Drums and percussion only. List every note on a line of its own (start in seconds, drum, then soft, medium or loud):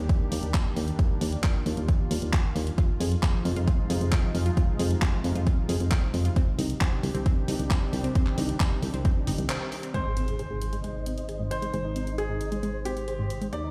0.09 kick loud
0.09 closed hi-hat medium
0.32 open hi-hat loud
0.43 closed hi-hat medium
0.54 kick loud
0.54 clap loud
0.54 closed hi-hat medium
0.77 open hi-hat loud
0.88 closed hi-hat medium
0.99 kick loud
0.99 closed hi-hat medium
1.21 open hi-hat loud
1.32 closed hi-hat medium
1.44 kick loud
1.44 clap loud
1.44 closed hi-hat medium
1.66 open hi-hat medium
1.77 closed hi-hat medium
1.88 kick loud
1.88 closed hi-hat medium
2.11 open hi-hat loud
2.22 closed hi-hat medium
2.33 kick loud
2.33 clap loud
2.33 closed hi-hat medium
2.56 open hi-hat medium
2.67 closed hi-hat medium
2.78 kick loud
2.78 closed hi-hat medium
3.01 open hi-hat loud
3.12 closed hi-hat medium
3.23 kick loud
3.23 clap loud
3.23 closed hi-hat medium
3.45 open hi-hat medium
3.56 closed hi-hat medium
3.68 kick loud
3.68 closed hi-hat medium
3.90 open hi-hat loud
4.01 closed hi-hat medium
4.12 kick loud
4.12 clap loud
4.12 closed hi-hat medium
4.35 open hi-hat medium
4.46 closed hi-hat medium
4.57 kick loud
4.57 closed hi-hat medium
4.79 open hi-hat loud
4.91 closed hi-hat medium
5.02 kick loud
5.02 clap loud
5.02 closed hi-hat medium
5.24 open hi-hat medium
5.35 closed hi-hat medium
5.47 kick loud
5.47 closed hi-hat medium
5.69 open hi-hat loud
5.80 closed hi-hat medium
5.91 kick loud
5.91 clap loud
5.91 closed hi-hat medium
6.14 open hi-hat medium
6.25 closed hi-hat medium
6.36 kick loud
6.36 closed hi-hat medium
6.59 open hi-hat loud
6.70 closed hi-hat medium
6.81 kick loud
6.81 clap loud
6.81 closed hi-hat medium
7.03 open hi-hat medium
7.15 closed hi-hat medium
7.26 kick loud
7.26 closed hi-hat medium
7.48 open hi-hat loud
7.59 closed hi-hat medium
7.71 kick loud
7.71 clap loud
7.71 closed hi-hat medium
7.93 open hi-hat medium
8.04 closed hi-hat medium
8.15 kick loud
8.15 closed hi-hat medium
8.27 clap soft
8.38 open hi-hat loud
8.49 closed hi-hat medium
8.60 kick loud
8.60 clap loud
8.60 closed hi-hat medium
8.83 open hi-hat medium
8.94 closed hi-hat medium
9.05 kick loud
9.05 closed hi-hat medium
9.27 open hi-hat loud
9.38 closed hi-hat medium
9.50 clap loud
9.50 closed hi-hat medium
9.72 open hi-hat medium
9.83 closed hi-hat medium
9.94 closed hi-hat medium
10.17 closed hi-hat medium
10.28 closed hi-hat medium
10.39 closed hi-hat medium
10.62 closed hi-hat medium
10.73 closed hi-hat medium
10.84 closed hi-hat medium
11.06 closed hi-hat medium
11.18 closed hi-hat medium
11.29 closed hi-hat medium
11.51 closed hi-hat medium
11.62 closed hi-hat medium
11.74 closed hi-hat medium
11.96 closed hi-hat medium
12.07 closed hi-hat medium
12.18 closed hi-hat medium
12.41 closed hi-hat medium
12.52 closed hi-hat medium
12.63 closed hi-hat medium
12.85 closed hi-hat medium
12.97 closed hi-hat medium
13.08 closed hi-hat medium
13.30 closed hi-hat medium
13.42 closed hi-hat medium
13.53 closed hi-hat medium